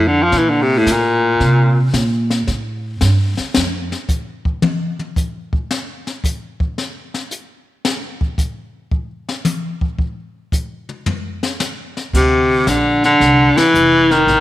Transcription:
Already playing: upright bass F2
0.07 baritone saxophone D3
0.23 baritone saxophone F3
0.32 upright bass A#2, brush sweep, kick, snare
0.37 baritone saxophone E3
0.50 baritone saxophone D3
0.62 baritone saxophone C3
0.78 baritone saxophone A2
0.86 upright bass A2, kick, snare, hi-hat pedal
0.91 baritone saxophone A#2
1.40 upright bass C3, brush sweep, kick, snare
1.93 upright bass A#2, kick, snare, hi-hat pedal
2.30 snare
2.47 upright bass A2, brush sweep, kick, snare
3.01 upright bass G2, kick, snare, hi-hat pedal
3.37 muted upright bass stroke, snare
3.54 upright bass F2, snare
3.92 snare
4.09 kick, hi-hat pedal
4.45 kick
4.62 high tom
4.99 high tom
5.16 kick, hi-hat pedal
5.53 kick
5.71 snare
6.07 snare
6.24 kick, hi-hat pedal
6.60 kick
6.78 snare
7.14 snare
7.31 hi-hat pedal
7.85 snare
8.21 kick
8.38 kick, hi-hat pedal
8.91 kick
9.29 snare
9.45 hi-hat pedal, high tom
9.81 kick
9.99 kick
10.52 kick, hi-hat pedal
10.89 mid tom
11.06 floor tom
11.43 snare
11.60 snare, hi-hat pedal
11.97 snare
12.13 upright bass D2, baritone saxophone C3, brush sweep, kick, snare, crash
12.67 upright bass A#1, baritone saxophone D3, kick, snare, hi-hat pedal
13.04 baritone saxophone D3, snare
13.20 upright bass C2, brush sweep, kick, snare
13.56 baritone saxophone E3, muted upright bass stroke, snare, ride
13.74 upright bass F1, hi-hat pedal
14.11 baritone saxophone D#3, snare
14.27 upright bass A1, brush sweep, kick, snare

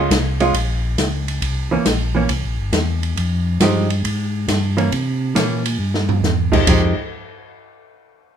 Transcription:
0.10 tonewheel organ C2, kick, snare, hi-hat pedal, ride
0.40 hollow-body jazz guitar G#3 C#4 F4, ride
0.54 tonewheel organ A#1, kick, ride
0.98 tonewheel organ C#2, kick, snare, hi-hat pedal, ride
1.28 ride
1.42 tonewheel organ C2, kick, ride
1.71 tonewheel organ C2, hollow-body jazz guitar E3 A#3 C#4
1.85 tonewheel organ A#1, kick, snare, hi-hat pedal, ride
2.15 hollow-body jazz guitar E3 A#3 C#4
2.29 tonewheel organ C2, kick, ride
2.44 tonewheel organ A#1
2.58 tonewheel organ G1
2.73 tonewheel organ E2, kick, snare, hi-hat pedal, ride
3.03 ride
3.16 tonewheel organ F2, kick, ride
3.60 tonewheel organ G2, hollow-body jazz guitar F3 G#3 D#4 G4, kick, snare, hi-hat pedal, ride
3.90 ride
4.04 tonewheel organ G#2, kick, ride
4.48 tonewheel organ G2, kick, snare, hi-hat pedal, ride
4.77 hollow-body jazz guitar E3 A#3 C#4, ride
4.92 tonewheel organ C3, kick, ride
5.35 tonewheel organ A#2, hollow-body jazz guitar E3 A#3 C#4, kick, snare, hi-hat pedal, ride
5.66 ride
5.79 tonewheel organ G2
5.94 snare
6.09 floor tom
6.22 tonewheel organ E2, snare, hi-hat pedal
6.52 hollow-body jazz guitar F3 G#3 D#4 G4, kick, crash
6.67 tonewheel organ F2, hollow-body jazz guitar F3 G#3 D#4 G4, kick, ride bell

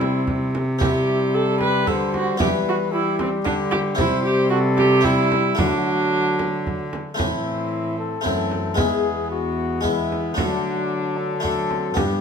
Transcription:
Already playing: harpsichord C3 C4 E4, cello C3, trombone G3, cornet C4, viola E4
0.01 frame drum
0.27 frame drum
0.55 frame drum
0.79 trombone G3, harpsichord C4 E4, cornet E4, viola G4, frame drum
1.34 cornet G4, viola A4
1.60 viola B4, frame drum
1.87 cello D3, harpsichord D3, viola A4, cornet C5, frame drum
2.14 viola F#4, frame drum
2.37 cello E3, harpsichord E3 B3 E4, trombone G3, viola G4, cornet B4, frame drum
2.69 viola F#4
2.92 trombone G3, viola E4, cornet G4
3.19 viola C4, frame drum
3.45 harpsichord D3, cello D3, viola D4, frame drum
3.71 viola G4, frame drum
3.95 harpsichord C3 C4 E4, cello C3, trombone G3, cornet C5, frame drum
3.99 viola E4
4.24 viola G4
4.50 viola F#4, cornet A4
4.78 viola G4, frame drum
5.01 trombone G3, harpsichord C4 E4, frame drum
5.05 viola E4, cornet G4
5.32 frame drum
5.55 harpsichord D3 A3 F#4, cello D3, trombone F#3, viola D4, cornet F#4, frame drum
6.39 frame drum
6.67 frame drum
6.93 frame drum
7.14 harpsichord A2 A3 C4 E4, trombone E3
7.19 cello A2, viola C4, cornet E4, frame drum
7.99 cornet A4
8.21 harpsichord F#2 A3 C4 E4, viola C4, cornet A4
8.26 cello F#2, trombone E3, frame drum
8.51 frame drum
8.74 harpsichord E2 G#3 B3 E4, trombone E3, frame drum
8.78 cello E2, viola B3, cornet G#4
9.31 cornet F#4
9.81 harpsichord G#3 B3 E4, cornet E4, frame drum
9.85 trombone E3, viola B3
10.12 frame drum
10.34 harpsichord D3 A3 D4 F#4, cello D3, cornet D4, viola D4, frame drum
10.38 trombone F#3
11.18 cornet A4
11.40 trombone F#3, harpsichord A3 D4 F#4, viola D4, cornet A4
11.44 frame drum
11.71 viola C4, frame drum
11.94 harpsichord G2 B3 D4, cello G2, trombone G3, viola B3, cornet G4, frame drum

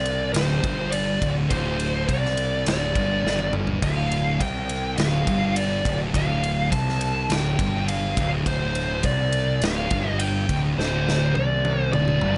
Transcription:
Already playing: fingered electric bass C2, distorted electric guitar C3, lead electric guitar D5
0.06 ride
0.33 fingered electric bass D1, distorted electric guitar D2, lead electric guitar C5, snare, ride
0.64 fingered electric bass G1, distorted electric guitar G2, kick, ride
0.91 lead electric guitar D5, ride
1.22 fingered electric bass D1, distorted electric guitar D2, kick, ride
1.50 fingered electric bass D1, distorted electric guitar D2, lead electric guitar C5, kick, ride
1.80 ride
2.08 fingered electric bass C2, distorted electric guitar C3, lead electric guitar D5, kick, ride
2.25 snare
2.37 ride
2.66 fingered electric bass D1, distorted electric guitar D2, lead electric guitar D5, snare, ride
2.95 fingered electric bass G1, distorted electric guitar G2, kick, ride
3.25 fingered electric bass G1, distorted electric guitar G2, snare
3.39 high tom
3.53 mid tom
3.67 floor tom
3.82 fingered electric bass D1, distorted electric guitar D2, lead electric guitar F5, kick, ride
4.12 ride
4.40 fingered electric bass C2, distorted electric guitar C3, lead electric guitar G5, kick, ride
4.69 ride
4.97 fingered electric bass D1, distorted electric guitar D2, lead electric guitar F5, snare, ride
5.27 fingered electric bass G1, distorted electric guitar G2, kick, ride
5.56 lead electric guitar D5, ride
5.85 fingered electric bass D1, distorted electric guitar D2, kick, ride
6.14 fingered electric bass D1, distorted electric guitar D2, lead electric guitar F5, kick, ride
6.44 ride
6.72 fingered electric bass C2, distorted electric guitar C3, lead electric guitar A5, kick, ride
6.89 snare
7.01 ride
7.30 fingered electric bass D1, distorted electric guitar D2, lead electric guitar G5, snare, ride
7.59 fingered electric bass G1, distorted electric guitar G2, kick, ride
7.88 lead electric guitar F5, ride
8.17 fingered electric bass D1, distorted electric guitar D2, kick, ride
8.45 fingered electric bass D1, distorted electric guitar D2, lead electric guitar C5, kick, ride
8.75 ride
9.03 fingered electric bass C2, distorted electric guitar C3, lead electric guitar D5, kick, ride
9.33 ride
9.62 fingered electric bass D1, distorted electric guitar D2, lead electric guitar F5, snare, ride
9.91 fingered electric bass G1, distorted electric guitar G2, kick, ride
10.20 lead electric guitar G5, ride
10.48 fingered electric bass D1, distorted electric guitar D2, kick, ride
10.78 fingered electric bass D1, distorted electric guitar D2, lead electric guitar C5, snare
11.09 snare
11.35 fingered electric bass C2, distorted electric guitar C3, lead electric guitar D5, high tom
11.65 high tom
11.93 fingered electric bass D1, distorted electric guitar D2, lead electric guitar D5, mid tom
12.08 mid tom
12.21 fingered electric bass G1, distorted electric guitar G2, mid tom

